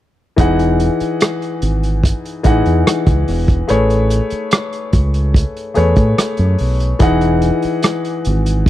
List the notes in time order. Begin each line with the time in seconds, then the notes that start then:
0.36 E1 E3 D#4 G#4 F#5, kick, closed hi-hat
0.59 closed hi-hat
0.80 closed hi-hat
1.00 muted fingered electric bass stroke, closed hi-hat
1.20 cross-stick, closed hi-hat
1.42 closed hi-hat
1.62 G#1, closed hi-hat
1.83 closed hi-hat
2.03 kick, closed hi-hat
2.25 closed hi-hat
2.43 A1 E3 D#4 G#4 F#5, kick, closed hi-hat
2.66 E2, closed hi-hat
2.87 cross-stick, closed hi-hat
3.06 C#2, kick, closed hi-hat
3.28 E1, cross-stick, open hi-hat
3.48 kick, closed hi-hat
3.67 A1 A3 G#4 B4 C#5, closed hi-hat
3.90 closed hi-hat
4.10 closed hi-hat
4.30 muted fingered electric bass stroke, closed hi-hat
4.51 cross-stick, closed hi-hat
4.73 closed hi-hat
4.93 C#2, kick, closed hi-hat
5.14 closed hi-hat
5.34 kick, closed hi-hat
5.57 closed hi-hat
5.74 E2 A3 G#4 B4 C#5, closed hi-hat
5.96 A2, kick, closed hi-hat
6.18 cross-stick, closed hi-hat
6.37 F#2, closed hi-hat
6.59 B1, open hi-hat
6.80 closed hi-hat
6.99 E1 E3 D#4 G#4 F#5, kick, closed hi-hat
7.21 closed hi-hat
7.42 closed hi-hat
7.62 muted fingered electric bass stroke, closed hi-hat
7.82 cross-stick, closed hi-hat
8.05 closed hi-hat
8.25 G#1, closed hi-hat
8.46 closed hi-hat
8.66 kick